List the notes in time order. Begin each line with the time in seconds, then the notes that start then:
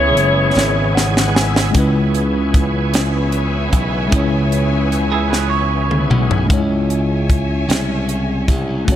Already playing: C#2 C#3 E3 G#3 B3 C#4 E4 G#4 B4 C#5
0.16 F#1, closed hi-hat
0.56 G#1, snare
0.95 F#5 G#5, snare
1.17 F#5, snare
1.35 E5 G#5, snare
1.56 snare
1.71 C#2 C#3 G#3 C#4 C#5, kick, closed hi-hat
1.75 E3 B3 C#4 E4 G#4 B4 E5 G#5
2.14 closed hi-hat
2.54 kick, closed hi-hat
2.94 snare, closed hi-hat
3.32 closed hi-hat
3.72 B1, kick, closed hi-hat
4.08 C#3 G#3 C#4, closed hi-hat
4.12 C#2 E4 C#5, kick
4.52 closed hi-hat
4.92 closed hi-hat
5.12 E4 G#4
5.30 G#4 B4, snare
5.50 C#5
5.91 mid tom
6.10 B1, mid tom
6.31 floor tom
6.46 C#3 G#3 C#4
6.50 C#2 D#4 G#4 C#5 E5 G#5, kick, closed hi-hat
6.58 E4
6.90 closed hi-hat
7.30 kick, closed hi-hat
7.68 C2, snare, closed hi-hat
8.09 closed hi-hat
8.48 C2, kick, closed hi-hat
8.85 C#2 C#3 A3 C#4 A4 C#5 F#5 A5, kick, closed hi-hat
8.90 F#4 C#5